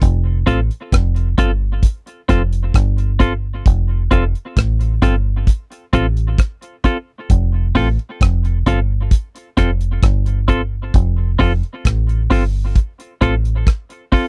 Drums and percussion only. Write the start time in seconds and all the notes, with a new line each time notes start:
0.02 kick, closed hi-hat
0.47 kick, closed hi-hat
0.71 closed hi-hat
0.92 kick, cross-stick, closed hi-hat
1.16 closed hi-hat
1.38 kick, closed hi-hat
1.83 kick, closed hi-hat
2.07 closed hi-hat
2.29 kick, cross-stick, closed hi-hat
2.53 closed hi-hat
2.74 kick, cross-stick, closed hi-hat
2.98 closed hi-hat
3.20 kick, closed hi-hat
3.66 kick, closed hi-hat
4.11 kick, closed hi-hat
4.35 closed hi-hat
4.57 kick, cross-stick, closed hi-hat
4.81 closed hi-hat
5.02 kick, closed hi-hat
5.47 kick, closed hi-hat
5.72 closed hi-hat
5.93 kick, closed hi-hat
6.17 closed hi-hat
6.38 kick, cross-stick, closed hi-hat
6.62 closed hi-hat
6.84 kick, closed hi-hat
7.30 kick, closed hi-hat
7.75 kick, open hi-hat
7.99 closed hi-hat
8.21 kick, cross-stick, closed hi-hat
8.45 closed hi-hat
8.66 kick, closed hi-hat
9.11 kick, closed hi-hat
9.36 closed hi-hat
9.57 kick, cross-stick, closed hi-hat
9.81 closed hi-hat
10.03 kick, cross-stick, closed hi-hat
10.26 closed hi-hat
10.48 kick, closed hi-hat
10.94 kick, closed hi-hat
11.40 kick, open hi-hat
11.63 closed hi-hat
11.85 kick, cross-stick, closed hi-hat
12.09 closed hi-hat
12.31 kick, open hi-hat
12.76 kick, closed hi-hat
13.00 closed hi-hat
13.22 kick, closed hi-hat
13.45 closed hi-hat
13.67 kick, cross-stick, closed hi-hat
13.90 closed hi-hat
14.12 kick, open hi-hat